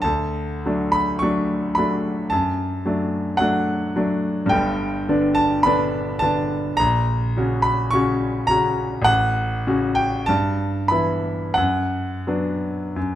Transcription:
0.02 0.63 D2 medium
0.02 0.92 A5 medium
0.66 1.18 F#3 soft
0.66 1.19 A3 soft
0.66 1.18 D4 soft
0.92 1.21 B5 medium
1.19 1.73 F#3 soft
1.19 1.74 A3 medium
1.19 1.74 D4 medium
1.19 1.76 C#6 medium
1.75 2.28 F#3 soft
1.75 2.28 A3 soft
1.75 2.29 D4 soft
1.75 2.31 B5 medium
2.30 2.84 F#2 medium
2.30 3.39 A5 medium
2.85 3.36 F#3 soft
2.85 3.36 A3 soft
2.85 3.36 D4 soft
3.37 3.91 F#3 soft
3.37 3.91 A3 soft
3.37 3.92 D4 medium
3.37 4.51 F#5 medium
3.96 4.48 F#3 soft
3.96 4.49 A3 soft
3.96 4.49 D4 soft
4.46 5.04 G2 medium
4.46 5.36 G5 medium
4.51 5.07 G1 medium
5.09 5.61 D3 soft
5.09 5.62 B3 medium
5.09 5.62 D4 medium
5.35 5.64 A5 loud
5.63 6.18 D3 medium
5.63 6.19 B3 medium
5.63 6.19 D4 medium
5.63 6.21 B5 loud
6.19 6.75 D3 medium
6.19 6.75 B3 soft
6.19 6.76 D4 medium
6.19 6.78 A5 loud
6.77 7.35 A#1 medium
6.77 7.63 A#5 loud
7.37 7.89 C#3 medium
7.37 7.89 C#4 soft
7.37 7.90 F#4 soft
7.62 7.92 B5 medium
7.91 8.46 C#3 medium
7.91 8.46 C#4 medium
7.91 8.46 F#4 medium
7.91 8.49 C#6 loud
8.47 9.03 C#3 medium
8.47 9.04 C#4 medium
8.47 9.04 F#4 medium
8.47 9.06 A#5 loud
9.02 9.62 A1 medium
9.02 9.96 F#5 loud
9.67 10.24 C#3 medium
9.67 10.24 C#4 medium
9.67 10.24 F#4 medium
9.95 10.27 G5 medium
10.26 10.89 G2 medium
10.26 10.90 A5 medium
10.88 11.53 E3 soft
10.88 11.54 B3 soft
10.88 11.54 E4 medium
10.88 11.56 B5 medium
11.54 12.25 F#2 medium
11.54 13.15 F#5 medium
12.27 12.92 F#3 soft
12.27 12.93 B3 soft
12.27 12.93 D4 soft
12.96 13.15 F#2 medium

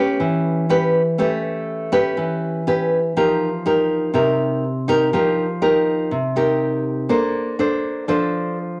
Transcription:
0.00 0.17 A3 medium
0.00 0.65 C#4 medium
0.00 0.65 G4 medium
0.00 0.66 B4 medium
0.20 1.16 E3 medium
0.69 1.01 C#4 medium
0.69 1.01 G4 medium
0.69 1.01 B4 medium
1.18 2.15 A3 medium
1.18 1.88 C#4 medium
1.18 1.89 G4 medium
1.18 1.89 B4 medium
1.92 2.62 C#4 medium
1.92 2.62 G4 medium
1.92 2.62 B4 medium
2.17 3.13 E3 medium
2.67 2.98 C#4 medium
2.67 2.99 G4 medium
2.67 2.99 B4 medium
3.17 4.12 F3 medium
3.17 3.48 D#4 medium
3.17 3.48 G4 medium
3.17 3.48 A#4 medium
3.66 4.10 D#4 medium
3.66 4.11 G4 soft
3.66 4.11 A#4 medium
4.14 5.10 C3 medium
4.14 4.63 D#4 soft
4.14 4.63 G4 soft
4.14 4.63 A#4 medium
4.88 5.09 D#4 medium
4.88 5.09 G4 medium
4.88 5.09 A#4 medium
5.13 6.09 F3 medium
5.13 5.45 D#4 medium
5.13 5.45 G4 soft
5.13 5.45 A#4 medium
5.62 6.11 D#4 medium
5.62 6.11 G4 medium
5.62 6.11 A#4 medium
6.11 7.07 C3 medium
6.36 7.08 D#4 medium
6.36 7.08 G4 medium
6.36 7.08 A#4 medium
7.09 8.06 A#3 medium
7.09 7.55 D4 soft
7.09 7.55 A4 soft
7.09 7.55 C5 medium
7.59 8.04 D4 medium
7.59 8.05 A4 medium
7.59 8.05 C5 medium
8.08 8.80 F3 medium
8.08 8.57 D4 soft
8.08 8.57 A4 soft
8.08 8.58 C5 medium

